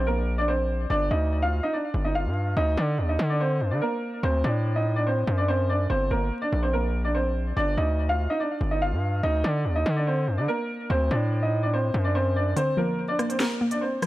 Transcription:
0.00 0.86 A#1 loud
0.07 0.36 A#3 medium
0.07 0.36 A#4 medium
0.38 0.48 D4 medium
0.38 0.48 D5 medium
0.48 0.88 C4 medium
0.48 0.87 C5 medium
0.90 1.10 G1 loud
0.90 1.10 D4 medium
0.90 1.10 D5 loud
1.11 1.61 D2 loud
1.11 1.41 D#4 medium
1.11 1.40 D#5 medium
1.42 1.62 F4 medium
1.42 1.62 F5 medium
1.63 1.73 D#4 medium
1.63 1.73 D#5 medium
1.73 2.03 D4 medium
1.73 2.03 D5 medium
1.94 2.27 G1 loud
2.05 2.15 D#4 medium
2.05 2.14 D#5 medium
2.15 2.55 F4 medium
2.15 2.54 F5 medium
2.25 2.55 G2 loud
2.57 2.77 D2 loud
2.57 2.77 D#4 medium
2.57 2.76 D#5 loud
2.77 3.00 D3 loud
2.77 3.07 D4 medium
2.77 3.07 D5 medium
2.98 3.18 D#2 loud
3.09 3.29 D#4 medium
3.09 3.28 D#5 medium
3.19 3.62 D3 loud
3.30 3.40 D4 medium
3.30 3.39 D5 medium
3.40 3.70 C4 medium
3.40 3.70 C5 medium
3.61 3.73 F#2 loud
3.71 3.81 D3 loud
3.71 3.81 D4 medium
3.71 3.81 D5 medium
3.81 4.21 A#3 medium
3.81 4.21 A#4 medium
4.23 4.43 D2 loud
4.23 4.43 C4 medium
4.23 4.43 C5 loud
4.44 5.24 A2 loud
4.44 4.74 D4 medium
4.44 4.74 D5 medium
4.76 4.96 D#4 medium
4.76 4.95 D#5 medium
4.96 5.06 D4 medium
4.96 5.06 D5 medium
5.07 5.36 C4 medium
5.07 5.36 C5 medium
5.27 5.87 F#2 loud
5.38 5.48 D4 medium
5.38 5.48 D5 medium
5.48 5.68 C4 medium
5.48 5.68 C5 medium
5.69 5.89 D4 medium
5.69 5.89 D5 medium
5.90 6.10 G1 loud
5.90 6.10 C4 medium
5.90 6.09 C5 loud
6.11 6.31 G1 loud
6.11 6.41 A#3 medium
6.11 6.40 A#4 medium
6.42 6.62 D4 medium
6.42 6.61 D5 medium
6.52 7.53 A#1 loud
6.63 6.73 C4 medium
6.63 6.73 C5 medium
6.73 7.03 A#3 medium
6.73 7.03 A#4 medium
7.05 7.15 D4 medium
7.05 7.14 D5 medium
7.15 7.54 C4 medium
7.15 7.54 C5 medium
7.57 7.77 G1 loud
7.57 7.77 D4 medium
7.57 7.76 D5 loud
7.77 8.27 D2 loud
7.77 8.07 D#4 medium
7.77 8.07 D#5 medium
8.09 8.29 F4 medium
8.09 8.29 F5 medium
8.30 8.40 D#4 medium
8.30 8.40 D#5 medium
8.40 8.70 D4 medium
8.40 8.69 D5 medium
8.61 8.94 G1 loud
8.71 8.81 D#4 medium
8.71 8.81 D#5 medium
8.82 9.21 F4 medium
8.82 9.21 F5 medium
8.92 9.22 G2 loud
9.23 9.43 D2 loud
9.23 9.43 D#4 medium
9.23 9.43 D#5 loud
9.44 9.66 D3 loud
9.44 9.74 D4 medium
9.44 9.73 D5 medium
9.65 9.85 D#2 loud
9.76 9.96 D#4 medium
9.76 9.95 D#5 medium
9.86 10.29 D3 loud
9.96 10.06 D4 medium
9.96 10.06 D5 medium
10.07 10.37 C4 medium
10.07 10.36 C5 medium
10.28 10.39 F#2 loud
10.38 10.48 D3 loud
10.38 10.48 D4 medium
10.38 10.48 D5 medium
10.48 10.88 A#3 medium
10.48 10.87 A#4 medium
10.90 11.10 D2 loud
10.90 11.10 C4 medium
10.90 11.09 C5 loud
11.11 11.91 A2 loud
11.11 11.41 D4 medium
11.11 11.40 D5 medium
11.43 11.62 D#4 medium
11.43 11.62 D#5 medium
11.63 11.73 D4 medium
11.63 11.73 D5 medium
11.73 12.03 C4 medium
11.73 12.03 C5 medium
11.94 12.54 F#2 loud
12.04 12.15 D4 medium
12.04 12.14 D5 medium
12.15 12.35 C4 medium
12.15 12.35 C5 medium
12.36 12.56 D4 medium
12.36 12.56 D5 medium
12.56 13.61 D3 loud
12.56 12.77 C4 medium
12.56 12.76 C5 loud
12.56 closed hi-hat medium
12.77 13.81 F3 medium
12.77 13.07 A#3 medium
12.77 13.07 A#4 medium
13.08 13.29 D4 medium
13.08 13.28 D5 medium
13.19 13.60 A#3 medium
13.19 cross-stick medium
13.19 closed hi-hat medium
13.29 13.40 C4 medium
13.29 13.39 C5 medium
13.29 closed hi-hat medium
13.40 13.70 A#3 medium
13.40 13.69 A#4 medium
13.40 snare loud
13.40 closed hi-hat medium
13.61 14.07 A#3 medium
13.71 13.81 D4 medium
13.71 13.81 D5 medium
13.71 closed hi-hat medium
13.81 14.07 C4 medium
13.81 14.07 C5 medium
14.02 14.07 F3 medium
14.02 cross-stick medium
14.02 closed hi-hat medium

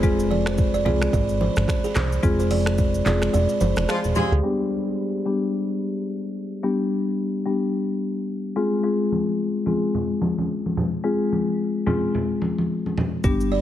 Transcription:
0.00 0.87 F1 loud
0.00 0.80 G#3 loud
0.00 0.80 C4 medium
0.00 0.80 F4 medium
0.00 0.80 G#4 loud
0.00 kick loud
0.00 shaker medium
0.19 shaker medium
0.31 0.40 D5 medium
0.31 high conga medium
0.46 0.54 C5 medium
0.46 finger snap loud
0.46 cross-stick loud
0.46 shaker soft
0.58 kick loud
0.58 shaker medium
0.74 0.81 D5 medium
0.74 shaker medium
0.85 1.08 C2 loud
0.85 1.11 G#3 medium
0.85 1.11 C4 medium
0.85 1.11 F4 medium
0.85 1.11 G#4 medium
0.85 0.96 D5 medium
0.85 high conga medium
0.85 low conga medium
1.02 finger snap medium
1.02 cross-stick loud
1.02 shaker medium
1.13 1.49 G#1 loud
1.13 1.23 D5 medium
1.13 kick loud
1.13 low conga medium
1.13 shaker medium
1.29 shaker medium
1.41 1.51 C5 medium
1.41 high conga medium
1.56 1.66 G#1 loud
1.56 finger snap medium
1.56 cross-stick loud
1.56 high conga medium
1.56 shaker medium
1.68 finger snap medium
1.68 kick medium
1.68 cross-stick medium
1.68 shaker medium
1.84 1.91 G#4 medium
1.84 shaker medium
1.95 2.19 C2 medium
1.95 2.06 C5 medium
1.95 finger snap medium
1.95 cross-stick loud
1.95 clap loud
1.95 high conga medium
1.95 low conga medium
1.95 shaker medium
2.12 shaker medium
2.23 3.02 F1 loud
2.23 3.00 G#3 medium
2.23 3.00 C4 medium
2.23 3.00 F4 medium
2.23 3.00 G#4 loud
2.23 kick loud
2.23 shaker medium
2.39 2.46 C5 medium
2.39 shaker medium
2.51 2.61 D5 medium
2.51 open hi-hat medium
2.51 high conga medium
2.51 shaker medium
2.66 finger snap medium
2.66 cross-stick loud
2.66 shaker soft
2.78 kick loud
2.78 shaker medium
2.94 shaker medium
3.05 3.29 F1 loud
3.05 3.31 G#3 medium
3.05 3.31 C4 medium
3.05 3.32 F4 medium
3.05 3.32 G#4 medium
3.05 3.16 D5 medium
3.05 clap medium
3.05 high conga medium
3.05 low conga medium
3.05 shaker medium
3.22 finger snap medium
3.22 cross-stick medium
3.22 shaker medium
3.33 3.47 F1 loud
3.33 3.43 D5 medium
3.33 low conga medium
3.33 shaker medium
3.49 shaker medium
3.61 3.74 G1 medium
3.61 3.71 C5 medium
3.61 high conga medium
3.61 shaker medium
3.76 3.86 F1 medium
3.76 finger snap medium
3.76 cross-stick medium
3.76 high conga medium
3.76 shaker medium
3.88 3.99 F3 loud
3.88 3.99 G#3 loud
3.88 3.99 C4 loud
3.88 3.99 F4 loud
3.88 3.98 G#4 medium
3.88 finger snap medium
3.88 cross-stick medium
3.88 shaker medium
4.04 4.14 E1 medium
4.04 shaker medium
4.15 4.33 G#3 loud
4.15 4.33 C4 loud
4.15 4.33 F4 medium
4.15 4.26 G4 medium
4.15 4.33 G#4 loud
4.15 high conga medium
4.15 low conga medium
4.15 shaker medium
4.32 4.41 D2 loud
4.32 4.39 G#4 medium
4.32 shaker medium
4.43 5.20 G3 medium
4.43 5.20 B3 medium
4.43 5.20 D4 medium
4.43 5.21 G4 loud
5.26 5.51 G3 medium
5.26 5.52 B3 medium
5.26 5.52 D4 medium
5.26 5.52 G4 medium
6.63 7.40 G3 medium
6.63 7.41 B3 medium
6.63 7.41 D4 medium
6.63 7.41 G4 loud
7.46 7.72 G3 medium
7.46 7.72 B3 medium
7.46 7.72 D4 medium
7.46 7.72 G4 medium
8.56 8.82 G#3 medium
8.56 8.82 C4 medium
8.56 8.82 F4 medium
8.56 8.82 G#4 loud
8.83 9.61 G#3 medium
8.83 9.61 C4 medium
8.83 9.61 F4 medium
8.83 9.61 G#4 loud
9.12 high conga medium
9.66 9.92 G#3 medium
9.66 9.92 C4 medium
9.66 9.92 F4 medium
9.66 9.92 G#4 medium
9.66 high conga medium
9.94 low conga medium
10.21 high conga medium
10.38 high conga medium
10.66 high conga medium
10.77 high conga medium
10.77 low conga medium
11.04 11.81 G#3 medium
11.04 11.81 C4 medium
11.04 11.81 F4 medium
11.04 11.81 G#4 loud
11.32 high conga medium
11.86 12.12 G#3 medium
11.86 12.12 C4 medium
11.86 12.12 F4 medium
11.86 12.12 G#4 medium
11.86 high conga medium
11.86 low conga medium
12.15 low conga medium
12.42 high conga medium
12.58 high conga medium
12.86 high conga medium
12.98 high conga medium
12.98 low conga medium
13.24 13.61 G1 loud
13.24 13.61 G3 medium
13.24 13.61 B3 medium
13.24 13.61 D4 medium
13.24 13.61 G4 loud
13.24 kick loud
13.24 shaker medium
13.40 shaker medium
13.52 13.61 D5 medium

